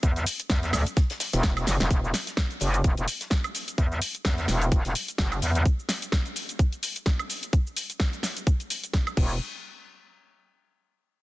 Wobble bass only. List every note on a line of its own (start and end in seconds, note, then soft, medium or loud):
0.03 0.25 E2 loud
0.50 0.72 E2 loud
0.73 0.84 D2 loud
1.33 1.65 E1 loud
1.67 1.78 F#1 loud
1.80 1.89 E1 loud
1.91 2.12 E1 loud
2.61 2.83 F#1 loud
2.84 2.95 E1 medium
2.98 3.06 E1 loud
3.78 4.00 E2 medium
4.25 4.47 E2 medium
4.48 4.83 E1 loud
4.85 4.94 E1 medium
5.19 5.40 F#1 loud
5.42 5.64 E2 loud
9.17 9.39 E1 loud